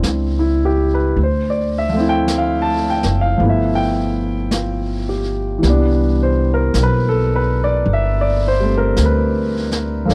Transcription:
Already playing: G3 B3 C4 D4 E4
0.03 C#2, brush sweep, snare, hi-hat pedal
0.39 E4
0.65 G4
0.94 B4
1.16 D2, brush sweep
1.23 C5
1.50 D5
1.78 E5
1.89 F3 A3
1.97 C4 E4
2.09 G5
2.28 brush sweep, snare, hi-hat pedal
2.38 F5
2.62 A5
2.90 G5
3.03 F#1, snare
3.21 F5
3.38 G1 F3 A3 B3, brush sweep
3.43 E4
3.49 E5
3.75 G5
4.51 F4, brush sweep, snare, hi-hat pedal
5.09 G4
5.58 E3 G3
5.63 C2 B3, brush sweep, snare
5.70 D4
6.23 C5
6.54 A#4
6.74 B1, brush sweep, snare, hi-hat pedal
6.83 B4
7.09 A4
7.35 B4
7.64 D5
7.85 G1, brush sweep
7.93 E5
8.21 D5
8.48 C5
8.60 G3 A3 C4
8.78 A#4
8.97 D2, brush sweep, snare, hi-hat pedal
9.05 B4
9.71 snare
10.05 G1 F3 A#3 A4
10.09 D4, brush sweep, snare

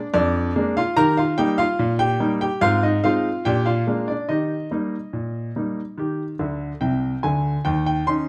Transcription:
Already playing: D4
0.14 F2 D4 D5
0.56 G#3 A#3 D4
0.77 F4 F5
0.97 D#3 G4 A#4 A#5
1.17 F4 F5
1.38 G3 A#3 D#4 G4 G5
1.58 F4 F5
1.79 A#2
1.99 G4 G5
2.20 G3 A#3 D#4
2.41 G4 G5
2.61 G#2 C4 F4 F5
2.83 D#4 D#5
3.04 G#3 C4 D#4 F4 F5
3.45 A#2 D4 G4 G5
3.66 F4 F5
3.87 G#3 A#3 D4
4.08 D4 D5
4.29 D#3 D#4 G4 D#5
4.71 G3 A#3 D#4
5.13 A#2
5.56 G3 A#3 D#4
5.98 D#3 G4
6.39 D2 D3
6.81 C2 C3 G5
7.23 D2 D3 G#5
7.65 D#2 D#3 G5
7.86 G5
8.07 D#3 C#4 D#4 C6

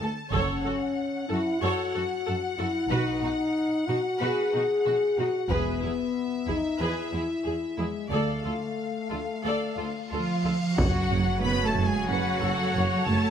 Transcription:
Already playing: A5
0.01 D2 A4
0.31 F#1 F#2 C#4 A4 C#5 F#5, taiko
0.64 F#2 F#4 A4
1.29 F#2 E4 F#4 A4
1.60 F#2 F#4 A4 C#5
1.93 F#2 F#4 A4
2.26 F#2 A4
2.58 F#2 E4 F#4 A4
2.90 B1 B2 D#4 F#4 B4
3.23 B2 D#4 F#4
3.87 B2 D#4 F#4
4.20 B2 F#4 G#4 B4
4.53 B2 D#4 F#4
4.85 B2 F#4
5.18 B2 D#4 F#4
5.50 E1 E2 B3 G#4 B4 E5, taiko
5.81 E2 E4 G#4
6.48 E2 D#4 E4 G#4, taiko
6.80 E2 E4 G#4 B4
7.12 E2 E4 G#4
7.45 E2 G#4
7.78 E2 G#3 E4 G#4
8.10 D2 A3 A4 D5 F5, cymbal swell
8.44 D2 F4 A4
9.10 D2 F4 A4
9.44 D2 A4 D5
9.77 D2 F4 A4
10.09 D2 F3 F4 A4 F5
10.13 A4
10.44 D2 F4 A4
10.75 F#1 F#2 F#3 F#4 F#5, taiko, sub drop
10.79 C#3 F#3 A3 C#4 F#4 A4 C#5
11.11 F#1 F#2
11.40 F#1 F#2 B3 B4 B5
11.63 A3 A4 A5
11.74 F#1 F#2
11.85 G#3 G#4 G#5
12.06 F#1 F#2 F#3 F#4 B4 F#5
12.39 F#1 F#2 A4
12.73 F#1 F#2 C#5
13.04 F#1 F#2 A3 A4 A5

